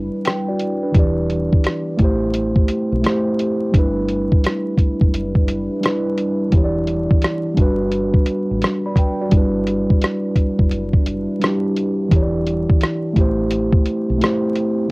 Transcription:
0.00 0.92 G3 medium
0.00 0.96 G3 medium
0.00 0.84 D4 medium
0.00 1.96 D4 medium
0.00 0.92 E4 medium
0.00 0.94 E4 medium
0.00 0.26 B4 medium
0.00 0.92 B4 medium
0.25 0.47 B4 soft
0.25 0.47 G5 medium
0.25 cross-stick loud
0.25 closed hi-hat medium
0.48 0.81 F#4 medium
0.48 0.81 D5 medium
0.59 closed hi-hat medium
0.83 1.16 D4 medium
0.83 1.16 B4 medium
0.92 1.48 E1 loud
0.92 1.89 E3 medium
0.92 1.91 E4 medium
0.92 3.72 G4 medium
0.92 kick loud
0.92 closed hi-hat medium
0.97 1.92 G4 medium
0.97 1.93 D5 medium
1.30 closed hi-hat soft
1.53 kick medium
1.64 cross-stick loud
1.64 closed hi-hat medium
1.97 2.65 A1 medium
1.97 2.86 A3 medium
1.97 3.72 A3 medium
1.97 3.72 C4 medium
1.97 2.87 E4 medium
1.97 kick medium
1.97 closed hi-hat medium
2.02 2.88 G4 medium
2.02 2.90 C5 loud
2.34 closed hi-hat medium
2.56 kick medium
2.68 closed hi-hat medium
2.92 3.04 B1 medium
3.02 3.53 A3 medium
3.02 3.54 E4 medium
3.02 closed hi-hat medium
3.06 3.55 G4 medium
3.06 3.56 C5 medium
3.06 cross-stick loud
3.39 closed hi-hat medium
3.72 4.27 G1 medium
3.72 4.69 G3 medium
3.72 6.50 G3 medium
3.72 4.70 D4 medium
3.72 9.29 D4 medium
3.72 6.51 E4 medium
3.72 6.51 B4 medium
3.72 kick loud
3.72 closed hi-hat medium
3.76 4.71 E4 medium
3.76 4.72 B4 medium
4.09 closed hi-hat medium
4.32 kick loud
4.44 cross-stick loud
4.44 closed hi-hat medium
4.78 kick medium
4.78 closed hi-hat medium
5.01 5.67 F#1 medium
5.01 kick medium
5.14 closed hi-hat medium
5.35 kick medium
5.48 closed hi-hat medium
5.81 6.32 G3 medium
5.81 6.33 D4 medium
5.81 closed hi-hat medium
5.85 6.34 E4 medium
5.85 6.35 B4 medium
5.85 cross-stick loud
6.18 closed hi-hat medium
6.50 7.06 E1 medium
6.50 7.48 E3 medium
6.50 7.49 E4 medium
6.50 kick loud
6.50 closed hi-hat medium
6.55 7.50 G4 medium
6.55 6.64 C#5 medium
6.64 7.55 D5 medium
6.87 closed hi-hat medium
7.11 kick medium
7.22 cross-stick loud
7.22 closed hi-hat medium
7.54 8.23 G1 medium
7.54 8.44 G3 medium
7.54 9.30 G3 medium
7.54 8.45 D4 medium
7.54 kick loud
7.54 closed hi-hat medium
7.58 9.31 F#4 medium
7.58 8.46 F#4 medium
7.58 9.31 B4 medium
7.58 8.47 B4 loud
7.92 closed hi-hat medium
8.14 kick medium
8.26 closed hi-hat medium
8.51 8.62 A1 medium
8.62 cross-stick loud
8.62 closed hi-hat medium
8.86 8.97 D5 medium
8.86 8.97 B5 medium
8.96 9.20 B4 medium
8.96 9.19 G5 medium
8.96 kick medium
8.96 closed hi-hat medium
9.21 9.54 F#4 medium
9.21 9.54 D5 medium
9.29 9.85 G1 loud
9.29 10.27 G3 medium
9.29 12.08 G3 medium
9.29 10.28 D4 medium
9.29 13.12 D4 medium
9.29 12.08 E4 medium
9.29 12.08 B4 medium
9.29 kick loud
9.29 closed hi-hat medium
9.34 10.29 E4 medium
9.34 10.30 B4 medium
9.67 closed hi-hat medium
9.90 kick medium
10.02 cross-stick loud
10.02 closed hi-hat medium
10.36 kick medium
10.36 closed hi-hat medium
10.59 11.25 F#1 medium
10.59 kick loud
10.71 closed hi-hat medium
10.93 kick medium
11.06 closed hi-hat medium
11.39 11.90 G3 medium
11.39 11.91 D4 medium
11.39 closed hi-hat medium
11.44 11.92 E4 medium
11.44 11.94 G4 medium
11.44 cross-stick loud
11.76 closed hi-hat medium
12.09 12.65 E1 loud
12.09 13.06 E3 medium
12.09 13.07 E4 medium
12.09 14.88 G4 medium
12.09 kick loud
12.09 closed hi-hat medium
12.14 13.09 G4 medium
12.14 12.22 C#5 medium
12.22 13.13 D5 medium
12.47 closed hi-hat medium
12.70 kick medium
12.81 cross-stick loud
12.81 closed hi-hat medium
13.13 13.82 A1 loud
13.13 14.02 A3 medium
13.13 14.89 A3 medium
13.13 14.89 C4 medium
13.13 14.03 E4 medium
13.13 kick loud
13.13 closed hi-hat medium
13.18 14.05 G4 medium
13.18 14.06 C5 loud
13.51 closed hi-hat medium
13.73 kick medium
13.86 closed hi-hat medium
14.10 14.20 B1 medium
14.18 14.69 A3 medium
14.18 14.70 E4 medium
14.18 closed hi-hat medium
14.23 14.71 G4 medium
14.23 14.73 C5 medium
14.23 cross-stick loud
14.56 closed hi-hat medium

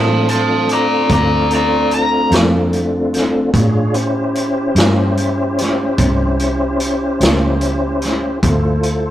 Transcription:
0.00 1.06 A2 medium
0.00 3.51 A3 medium
0.00 3.51 C4 medium
0.00 3.51 D4 medium
0.00 3.51 F4 medium
0.00 0.26 C5 medium
0.00 0.28 A5 medium
0.29 0.67 C5 medium
0.29 0.69 A5 medium
0.29 closed hi-hat medium
0.69 1.09 D5 medium
0.69 closed hi-hat medium
0.74 1.11 A#5 medium
1.09 2.28 D2 medium
1.09 1.49 D5 medium
1.09 1.51 A#5 medium
1.09 kick loud
1.09 closed hi-hat medium
1.51 closed hi-hat medium
1.55 1.91 D5 medium
1.55 1.93 A#5 medium
1.91 2.32 A#5 medium
1.91 closed hi-hat medium
2.31 3.50 F2 medium
2.31 snare loud
2.31 closed hi-hat medium
2.73 closed hi-hat soft
3.14 snare soft
3.14 closed hi-hat medium
3.54 4.72 A2 medium
3.54 3.95 D4 medium
3.54 3.96 F4 medium
3.54 3.95 G#4 medium
3.54 3.95 C#5 medium
3.54 kick medium
3.54 closed hi-hat medium
3.94 8.39 C#4 medium
3.94 8.39 E4 medium
3.94 8.39 G4 medium
3.94 8.39 C5 medium
3.94 closed hi-hat soft
4.35 closed hi-hat soft
4.75 5.94 G2 medium
4.75 snare loud
4.75 closed hi-hat medium
5.17 closed hi-hat medium
5.58 snare soft
5.58 closed hi-hat medium
5.98 7.17 C2 medium
5.98 kick loud
5.98 closed hi-hat medium
6.39 closed hi-hat medium
6.80 closed hi-hat medium
7.20 8.39 C#2 medium
7.20 snare loud
7.20 closed hi-hat medium
7.61 closed hi-hat medium
8.02 snare soft
8.02 closed hi-hat medium
8.43 9.11 D2 medium
8.43 9.11 E4 medium
8.43 9.11 F4 medium
8.43 9.11 A4 medium
8.43 9.11 C5 medium
8.43 kick loud
8.43 closed hi-hat medium
8.83 closed hi-hat medium

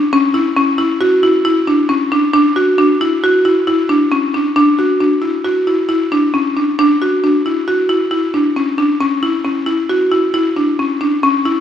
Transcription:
0.13 0.25 C#4 loud
0.34 0.46 E4 medium
0.57 0.69 C#4 medium
0.78 0.90 E4 medium
1.01 1.13 F#4 medium
1.23 1.35 E4 medium
1.45 1.57 E4 medium
1.67 1.80 D4 medium
1.89 2.01 C#4 medium
2.12 2.24 D4 medium
2.34 2.46 D4 medium
2.56 2.68 F#4 medium
2.78 2.90 D4 medium
3.01 3.13 E4 medium
3.24 3.36 F#4 medium
3.45 3.57 E4 medium
3.67 3.80 E4 medium
3.89 4.02 D4 medium
4.12 4.24 C#4 medium
4.34 4.46 D4 medium
4.56 4.68 D4 medium
4.79 4.91 F#4 medium
5.00 5.13 D4 medium
5.22 5.34 E4 medium
5.45 5.57 F#4 medium
5.67 5.79 E4 medium
5.89 6.01 E4 medium
6.12 6.24 D4 medium
6.34 6.46 C#4 medium
6.57 6.69 D4 medium
6.79 6.91 D4 medium
7.02 7.14 F#4 medium
7.24 7.36 D4 medium
7.46 7.58 E4 medium
7.68 7.80 F#4 medium
7.89 8.02 E4 medium
8.11 8.23 E4 medium
8.34 8.46 D4 medium
8.56 8.69 C#4 medium
8.78 8.90 D4 medium
9.00 9.13 C#4 medium
9.23 9.35 E4 medium
9.45 9.57 C#4 medium
9.67 9.79 E4 medium
9.89 10.02 F#4 medium
10.12 10.24 E4 medium
10.34 10.46 E4 medium
10.56 10.69 D4 medium
10.79 10.91 C#4 medium
11.01 11.13 D4 medium
11.23 11.36 C#4 medium
11.45 11.58 E4 medium

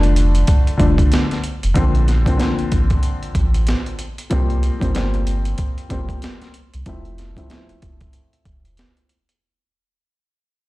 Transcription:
0.00 0.44 F1 medium
0.00 0.73 D3 medium
0.00 0.74 F3 medium
0.00 0.74 A3 medium
0.00 0.75 D4 loud
0.00 closed hi-hat soft
0.16 closed hi-hat medium
0.35 closed hi-hat medium
0.47 kick medium
0.47 closed hi-hat medium
0.67 closed hi-hat soft
0.77 1.04 F1 medium
0.77 1.38 D3 medium
0.77 1.39 F3 medium
0.77 1.39 A3 medium
0.77 1.40 D4 medium
0.77 kick medium
0.77 closed hi-hat medium
0.98 kick loud
0.98 closed hi-hat medium
1.12 snare loud
1.12 closed hi-hat medium
1.31 snare soft
1.31 closed hi-hat soft
1.44 closed hi-hat medium
1.63 1.73 F1 medium
1.63 closed hi-hat medium
1.74 2.25 A#1 loud
1.74 2.21 D3 loud
1.74 2.22 F3 medium
1.74 2.22 A#3 medium
1.74 2.23 C4 loud
1.74 kick loud
1.74 closed hi-hat medium
1.95 closed hi-hat soft
2.08 snare soft
2.08 closed hi-hat medium
2.25 2.36 D3 medium
2.25 2.37 F3 medium
2.25 2.37 A#3 medium
2.25 2.38 C4 loud
2.25 kick loud
2.25 closed hi-hat medium
2.37 4.00 D3 medium
2.37 4.01 F3 medium
2.37 4.01 A#3 medium
2.37 4.01 C4 loud
2.37 snare loud
2.37 closed hi-hat medium
2.59 2.64 A1 soft
2.59 closed hi-hat soft
2.72 2.96 A1 medium
2.72 kick medium
2.72 closed hi-hat medium
2.90 kick loud
2.90 closed hi-hat soft
3.03 closed hi-hat medium
3.23 closed hi-hat soft
3.35 3.75 A1 medium
3.35 kick medium
3.35 closed hi-hat medium
3.54 closed hi-hat medium
3.67 snare loud
3.67 closed hi-hat medium
3.86 closed hi-hat soft
3.99 closed hi-hat medium
4.18 closed hi-hat medium
4.30 4.70 C2 loud
4.30 4.77 F3 loud
4.30 4.77 G3 medium
4.30 4.78 A#3 medium
4.30 4.78 C4 loud
4.30 kick loud
4.30 closed hi-hat medium
4.50 closed hi-hat soft
4.63 closed hi-hat medium
4.80 5.55 G1 medium
4.80 4.92 F3 medium
4.80 4.93 G3 medium
4.80 4.94 A#3 medium
4.80 4.95 C4 loud
4.80 kick loud
4.80 closed hi-hat medium
4.94 5.84 F3 medium
4.94 5.84 G3 medium
4.94 5.85 A#3 medium
4.94 5.85 C4 loud
4.94 snare loud
4.94 closed hi-hat medium
5.14 closed hi-hat soft
5.27 closed hi-hat medium
5.45 closed hi-hat soft
5.58 kick medium
5.58 closed hi-hat medium
5.78 closed hi-hat soft
5.89 6.15 G1 medium
5.89 6.50 F3 medium
5.89 6.50 G3 medium
5.89 6.50 A#3 medium
5.89 6.51 C4 loud
5.89 kick medium
5.89 closed hi-hat medium
6.09 kick medium
6.09 closed hi-hat medium
6.22 snare loud
6.22 closed hi-hat medium
6.42 snare soft
6.42 closed hi-hat soft
6.54 closed hi-hat medium
6.74 6.84 C2 medium
6.74 closed hi-hat medium
6.86 7.35 F1 loud
6.86 7.33 F3 loud
6.86 7.33 A3 medium
6.86 7.34 C4 medium
6.86 7.34 E4 loud
6.86 kick loud
6.86 closed hi-hat medium
7.05 closed hi-hat soft
7.18 snare soft
7.18 closed hi-hat medium
7.36 7.47 F3 medium
7.36 7.48 A3 medium
7.36 7.49 C4 medium
7.36 7.50 E4 loud
7.36 kick loud
7.36 closed hi-hat medium
7.49 9.11 F3 medium
7.49 9.12 A3 medium
7.49 9.12 C4 medium
7.49 9.13 E4 loud
7.49 snare loud
7.49 closed hi-hat medium
7.69 7.75 E1 soft
7.69 closed hi-hat soft
7.82 8.07 E1 medium
7.82 kick medium
7.82 closed hi-hat medium
8.01 kick loud
8.01 closed hi-hat soft
8.13 closed hi-hat loud
8.33 closed hi-hat soft
8.45 8.85 E1 loud
8.45 kick medium
8.45 closed hi-hat medium
8.65 closed hi-hat medium
8.77 snare loud
8.77 closed hi-hat medium
8.97 closed hi-hat soft
9.09 closed hi-hat medium
9.29 closed hi-hat medium

